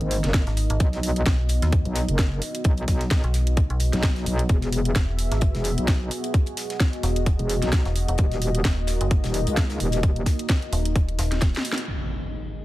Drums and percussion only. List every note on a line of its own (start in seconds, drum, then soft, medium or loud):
0.01 closed hi-hat soft
0.11 closed hi-hat medium
0.11 open hi-hat loud
0.24 snare soft
0.24 closed hi-hat medium
0.33 kick loud
0.33 snare loud
0.33 closed hi-hat medium
0.47 snare medium
0.47 closed hi-hat soft
0.57 closed hi-hat medium
0.57 open hi-hat loud
0.70 closed hi-hat medium
0.80 kick loud
0.80 closed hi-hat medium
0.93 snare soft
0.93 closed hi-hat soft
1.03 closed hi-hat medium
1.03 open hi-hat loud
1.16 closed hi-hat medium
1.26 kick loud
1.26 snare loud
1.26 closed hi-hat medium
1.49 closed hi-hat medium
1.49 open hi-hat loud
1.62 snare soft
1.62 closed hi-hat medium
1.73 kick loud
1.73 closed hi-hat medium
1.85 closed hi-hat soft
1.95 snare loud
1.95 closed hi-hat medium
1.95 open hi-hat loud
2.09 closed hi-hat medium
2.18 kick loud
2.18 snare loud
2.18 closed hi-hat medium
2.42 closed hi-hat medium
2.42 open hi-hat loud
2.55 closed hi-hat soft
2.55 closed hi-hat medium
2.64 kick loud
2.64 closed hi-hat medium
2.77 closed hi-hat soft
2.88 kick medium
2.88 snare soft
2.88 closed hi-hat medium
2.88 open hi-hat loud
3.00 snare soft
3.00 closed hi-hat medium
3.11 kick loud
3.11 snare loud
3.11 closed hi-hat medium
3.24 closed hi-hat soft
3.34 snare medium
3.34 closed hi-hat medium
3.34 open hi-hat loud
3.47 closed hi-hat medium
3.57 kick loud
3.57 closed hi-hat medium
3.70 closed hi-hat soft
3.80 closed hi-hat medium
3.80 open hi-hat loud
3.93 snare soft
3.93 closed hi-hat medium
4.03 kick loud
4.03 snare loud
4.03 closed hi-hat medium
4.16 snare soft
4.16 closed hi-hat soft
4.26 closed hi-hat medium
4.26 open hi-hat loud
4.39 closed hi-hat medium
4.49 kick loud
4.49 closed hi-hat medium
4.62 snare medium
4.62 closed hi-hat soft
4.72 closed hi-hat medium
4.72 open hi-hat loud
4.85 closed hi-hat medium
4.95 kick loud
4.95 snare loud
4.95 closed hi-hat medium
4.95 closed hi-hat loud
5.19 closed hi-hat medium
5.19 open hi-hat loud
5.32 snare soft
5.32 closed hi-hat medium
5.41 kick loud
5.41 closed hi-hat medium
5.55 snare soft
5.55 closed hi-hat soft
5.64 closed hi-hat medium
5.64 open hi-hat loud
5.78 closed hi-hat medium
5.88 kick loud
5.88 snare loud
5.88 closed hi-hat medium
6.11 closed hi-hat medium
6.11 open hi-hat loud
6.24 closed hi-hat medium
6.24 closed hi-hat soft
6.34 kick loud
6.34 closed hi-hat medium
6.34 closed hi-hat loud
6.46 closed hi-hat soft
6.57 snare medium
6.57 closed hi-hat medium
6.57 open hi-hat loud
6.70 snare soft
6.70 closed hi-hat medium
6.80 kick loud
6.80 snare loud
6.80 closed hi-hat medium
6.93 closed hi-hat soft
7.03 snare soft
7.03 closed hi-hat medium
7.03 open hi-hat medium
7.16 closed hi-hat medium
7.26 kick loud
7.26 closed hi-hat medium
7.39 closed hi-hat soft
7.50 closed hi-hat medium
7.50 open hi-hat loud
7.62 snare soft
7.62 closed hi-hat medium
7.72 kick loud
7.72 snare loud
7.72 closed hi-hat medium
7.85 snare soft
7.85 closed hi-hat soft
7.96 closed hi-hat medium
7.96 open hi-hat medium
8.08 closed hi-hat medium
8.18 kick loud
8.18 closed hi-hat medium
8.31 snare soft
8.31 closed hi-hat soft
8.42 closed hi-hat medium
8.42 open hi-hat loud
8.55 closed hi-hat medium
8.65 kick loud
8.65 snare loud
8.65 closed hi-hat medium
8.87 snare loud
8.87 closed hi-hat medium
8.87 open hi-hat medium
9.01 closed hi-hat medium
9.11 kick loud
9.11 closed hi-hat medium
9.24 snare loud
9.24 closed hi-hat medium
9.24 closed hi-hat soft
9.34 open hi-hat loud
9.47 closed hi-hat medium
9.57 kick loud
9.57 snare soft
9.57 snare loud
9.57 closed hi-hat medium
9.69 snare loud
9.69 closed hi-hat medium
9.80 open hi-hat medium
9.92 snare soft
9.92 closed hi-hat medium
10.03 kick loud
10.03 closed hi-hat medium
10.16 closed hi-hat soft
10.26 kick medium
10.26 snare loud
10.26 closed hi-hat medium
10.26 open hi-hat loud
10.39 closed hi-hat medium
10.49 kick loud
10.49 snare loud
10.49 closed hi-hat medium
10.62 closed hi-hat soft
10.73 closed hi-hat medium
10.73 open hi-hat medium
10.85 closed hi-hat medium
10.96 kick loud
10.96 closed hi-hat medium
11.09 closed hi-hat soft
11.19 snare loud
11.19 closed hi-hat medium
11.19 open hi-hat loud
11.32 snare soft
11.32 closed hi-hat medium
11.41 kick loud
11.41 snare medium
11.41 snare loud
11.41 closed hi-hat loud
11.41 closed hi-hat medium
11.54 snare soft
11.54 closed hi-hat soft
11.57 snare medium
11.65 closed hi-hat medium
11.65 open hi-hat medium
11.72 snare loud
11.78 closed hi-hat medium
11.88 crash medium